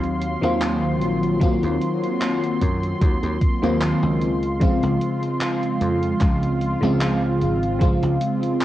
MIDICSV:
0, 0, Header, 1, 5, 480
1, 0, Start_track
1, 0, Tempo, 800000
1, 847, Time_signature, 4, 2, 24, 8
1, 5189, End_track
2, 0, Start_track
2, 0, Title_t, "Analog synth pad"
2, 0, Program_c, 0, 89
2, 0, Note_on_c, 0, 54, 80
2, 0, Note_on_c, 0, 77, 77
2, 0, Note_on_c, 0, 84, 91
2, 828, Note_off_c, 0, 77, 0
2, 2503, Note_off_c, 0, 54, 0
2, 2526, Note_on_c, 0, 65, 85
2, 5189, Note_off_c, 0, 65, 0
2, 5189, Note_off_c, 0, 84, 0
2, 5189, End_track
3, 0, Start_track
3, 0, Title_t, "FM electric piano"
3, 0, Program_c, 1, 5
3, 0, Control_c, 1, 64, 127
3, 0, Note_on_c, 1, 51, 89
3, 0, Note_on_c, 1, 54, 83
3, 0, Note_on_c, 1, 58, 83
3, 0, Note_on_c, 1, 60, 81
3, 0, Note_on_c, 1, 65, 97
3, 222, Note_off_c, 1, 51, 0
3, 224, Note_off_c, 1, 54, 0
3, 227, Note_off_c, 1, 58, 0
3, 229, Note_off_c, 1, 60, 0
3, 231, Note_off_c, 1, 65, 0
3, 247, Note_on_c, 1, 51, 95
3, 252, Note_on_c, 1, 54, 88
3, 257, Note_on_c, 1, 58, 86
3, 261, Note_on_c, 1, 60, 86
3, 266, Note_on_c, 1, 65, 107
3, 816, Note_off_c, 1, 51, 0
3, 818, Note_off_c, 1, 54, 0
3, 821, Note_off_c, 1, 58, 0
3, 823, Note_off_c, 1, 60, 0
3, 825, Note_off_c, 1, 65, 0
3, 838, Note_on_c, 1, 51, 91
3, 843, Note_on_c, 1, 54, 84
3, 847, Note_on_c, 1, 58, 86
3, 852, Note_on_c, 1, 60, 85
3, 857, Note_on_c, 1, 65, 101
3, 2142, Note_off_c, 1, 51, 0
3, 2144, Note_off_c, 1, 54, 0
3, 2146, Note_off_c, 1, 58, 0
3, 2149, Note_off_c, 1, 60, 0
3, 2151, Note_off_c, 1, 65, 0
3, 2173, Note_on_c, 1, 51, 95
3, 2174, Note_on_c, 1, 54, 86
3, 2177, Note_on_c, 1, 58, 87
3, 2180, Note_on_c, 1, 60, 89
3, 2182, Note_on_c, 1, 65, 105
3, 2511, Note_off_c, 1, 51, 0
3, 2512, Note_off_c, 1, 54, 0
3, 2513, Note_off_c, 1, 58, 0
3, 2515, Note_off_c, 1, 60, 0
3, 2516, Note_off_c, 1, 65, 0
3, 2535, Control_c, 1, 64, 0
3, 2634, Control_c, 1, 64, 127
3, 2758, Note_on_c, 1, 49, 94
3, 2763, Note_on_c, 1, 53, 85
3, 2768, Note_on_c, 1, 56, 86
3, 2773, Note_on_c, 1, 60, 84
3, 2776, Note_on_c, 1, 65, 101
3, 4062, Note_off_c, 1, 49, 0
3, 4064, Note_off_c, 1, 53, 0
3, 4067, Note_off_c, 1, 56, 0
3, 4069, Note_off_c, 1, 60, 0
3, 4071, Note_off_c, 1, 65, 0
3, 4086, Note_on_c, 1, 49, 95
3, 4092, Note_on_c, 1, 53, 86
3, 4097, Note_on_c, 1, 56, 87
3, 4100, Note_on_c, 1, 60, 88
3, 4105, Note_on_c, 1, 65, 106
3, 4655, Note_off_c, 1, 49, 0
3, 4658, Note_off_c, 1, 53, 0
3, 4660, Note_off_c, 1, 56, 0
3, 4662, Note_off_c, 1, 60, 0
3, 4665, Note_off_c, 1, 65, 0
3, 4675, Note_on_c, 1, 49, 94
3, 4678, Note_on_c, 1, 53, 84
3, 4684, Note_on_c, 1, 56, 84
3, 4688, Note_on_c, 1, 60, 87
3, 4692, Note_on_c, 1, 65, 102
3, 5189, Note_off_c, 1, 49, 0
3, 5189, Note_off_c, 1, 53, 0
3, 5189, Note_off_c, 1, 56, 0
3, 5189, Note_off_c, 1, 60, 0
3, 5189, Note_off_c, 1, 65, 0
3, 5189, End_track
4, 0, Start_track
4, 0, Title_t, "Slap bass"
4, 0, Program_c, 2, 36
4, 0, Note_on_c, 2, 39, 96
4, 207, Note_off_c, 2, 39, 0
4, 259, Note_on_c, 2, 39, 100
4, 608, Note_off_c, 2, 39, 0
4, 608, Note_on_c, 2, 34, 86
4, 927, Note_off_c, 2, 34, 0
4, 979, Note_on_c, 2, 39, 94
4, 1061, Note_off_c, 2, 39, 0
4, 1568, Note_on_c, 2, 42, 86
4, 1754, Note_off_c, 2, 42, 0
4, 1807, Note_on_c, 2, 39, 94
4, 1906, Note_off_c, 2, 39, 0
4, 1936, Note_on_c, 2, 39, 96
4, 2019, Note_off_c, 2, 39, 0
4, 2176, Note_on_c, 2, 39, 89
4, 2352, Note_off_c, 2, 39, 0
4, 2415, Note_on_c, 2, 37, 85
4, 2845, Note_off_c, 2, 37, 0
4, 2899, Note_on_c, 2, 37, 98
4, 2981, Note_off_c, 2, 37, 0
4, 3487, Note_on_c, 2, 41, 86
4, 3673, Note_off_c, 2, 41, 0
4, 3727, Note_on_c, 2, 37, 97
4, 4046, Note_off_c, 2, 37, 0
4, 4096, Note_on_c, 2, 37, 108
4, 4449, Note_on_c, 2, 32, 92
4, 4458, Note_off_c, 2, 37, 0
4, 4767, Note_off_c, 2, 32, 0
4, 4819, Note_on_c, 2, 37, 94
4, 4901, Note_off_c, 2, 37, 0
4, 5189, End_track
5, 0, Start_track
5, 0, Title_t, "Drums"
5, 20, Note_on_c, 9, 42, 38
5, 80, Note_off_c, 9, 42, 0
5, 128, Note_on_c, 9, 42, 62
5, 188, Note_off_c, 9, 42, 0
5, 259, Note_on_c, 9, 42, 37
5, 319, Note_off_c, 9, 42, 0
5, 368, Note_on_c, 9, 39, 120
5, 368, Note_on_c, 9, 42, 88
5, 428, Note_off_c, 9, 39, 0
5, 428, Note_off_c, 9, 42, 0
5, 608, Note_on_c, 9, 42, 37
5, 668, Note_off_c, 9, 42, 0
5, 739, Note_on_c, 9, 42, 37
5, 799, Note_off_c, 9, 42, 0
5, 848, Note_on_c, 9, 36, 114
5, 848, Note_on_c, 9, 42, 86
5, 908, Note_off_c, 9, 36, 0
5, 908, Note_off_c, 9, 42, 0
5, 978, Note_on_c, 9, 42, 36
5, 1038, Note_off_c, 9, 42, 0
5, 1088, Note_on_c, 9, 42, 59
5, 1148, Note_off_c, 9, 42, 0
5, 1220, Note_on_c, 9, 42, 37
5, 1280, Note_off_c, 9, 42, 0
5, 1328, Note_on_c, 9, 39, 112
5, 1328, Note_on_c, 9, 42, 84
5, 1388, Note_off_c, 9, 39, 0
5, 1388, Note_off_c, 9, 42, 0
5, 1460, Note_on_c, 9, 42, 36
5, 1520, Note_off_c, 9, 42, 0
5, 1568, Note_on_c, 9, 36, 58
5, 1568, Note_on_c, 9, 42, 63
5, 1628, Note_off_c, 9, 36, 0
5, 1628, Note_off_c, 9, 42, 0
5, 1698, Note_on_c, 9, 42, 37
5, 1758, Note_off_c, 9, 42, 0
5, 1807, Note_on_c, 9, 36, 112
5, 1808, Note_on_c, 9, 42, 85
5, 1867, Note_off_c, 9, 36, 0
5, 1868, Note_off_c, 9, 42, 0
5, 1939, Note_on_c, 9, 42, 37
5, 1999, Note_off_c, 9, 42, 0
5, 2047, Note_on_c, 9, 36, 99
5, 2047, Note_on_c, 9, 42, 61
5, 2107, Note_off_c, 9, 36, 0
5, 2107, Note_off_c, 9, 42, 0
5, 2181, Note_on_c, 9, 42, 37
5, 2241, Note_off_c, 9, 42, 0
5, 2287, Note_on_c, 9, 39, 115
5, 2287, Note_on_c, 9, 42, 89
5, 2347, Note_off_c, 9, 39, 0
5, 2347, Note_off_c, 9, 42, 0
5, 2528, Note_on_c, 9, 42, 37
5, 2588, Note_off_c, 9, 42, 0
5, 2657, Note_on_c, 9, 42, 37
5, 2717, Note_off_c, 9, 42, 0
5, 2767, Note_on_c, 9, 36, 110
5, 2767, Note_on_c, 9, 42, 85
5, 2827, Note_off_c, 9, 36, 0
5, 2827, Note_off_c, 9, 42, 0
5, 2898, Note_on_c, 9, 42, 38
5, 2958, Note_off_c, 9, 42, 0
5, 3008, Note_on_c, 9, 42, 62
5, 3068, Note_off_c, 9, 42, 0
5, 3137, Note_on_c, 9, 42, 38
5, 3197, Note_off_c, 9, 42, 0
5, 3246, Note_on_c, 9, 39, 106
5, 3246, Note_on_c, 9, 42, 87
5, 3306, Note_off_c, 9, 39, 0
5, 3306, Note_off_c, 9, 42, 0
5, 3378, Note_on_c, 9, 42, 38
5, 3438, Note_off_c, 9, 42, 0
5, 3487, Note_on_c, 9, 42, 64
5, 3547, Note_off_c, 9, 42, 0
5, 3618, Note_on_c, 9, 42, 39
5, 3678, Note_off_c, 9, 42, 0
5, 3726, Note_on_c, 9, 39, 58
5, 3726, Note_on_c, 9, 42, 89
5, 3727, Note_on_c, 9, 36, 110
5, 3786, Note_off_c, 9, 39, 0
5, 3786, Note_off_c, 9, 42, 0
5, 3787, Note_off_c, 9, 36, 0
5, 3859, Note_on_c, 9, 42, 38
5, 3919, Note_off_c, 9, 42, 0
5, 3968, Note_on_c, 9, 42, 63
5, 4028, Note_off_c, 9, 42, 0
5, 4100, Note_on_c, 9, 42, 39
5, 4160, Note_off_c, 9, 42, 0
5, 4207, Note_on_c, 9, 39, 114
5, 4207, Note_on_c, 9, 42, 92
5, 4267, Note_off_c, 9, 39, 0
5, 4267, Note_off_c, 9, 42, 0
5, 4449, Note_on_c, 9, 42, 37
5, 4509, Note_off_c, 9, 42, 0
5, 4578, Note_on_c, 9, 42, 37
5, 4638, Note_off_c, 9, 42, 0
5, 4686, Note_on_c, 9, 36, 112
5, 4687, Note_on_c, 9, 42, 88
5, 4746, Note_off_c, 9, 36, 0
5, 4747, Note_off_c, 9, 42, 0
5, 4818, Note_on_c, 9, 42, 39
5, 4878, Note_off_c, 9, 42, 0
5, 4928, Note_on_c, 9, 42, 65
5, 4988, Note_off_c, 9, 42, 0
5, 5060, Note_on_c, 9, 42, 40
5, 5120, Note_off_c, 9, 42, 0
5, 5168, Note_on_c, 9, 39, 110
5, 5168, Note_on_c, 9, 42, 92
5, 5189, Note_off_c, 9, 39, 0
5, 5189, Note_off_c, 9, 42, 0
5, 5189, End_track
0, 0, End_of_file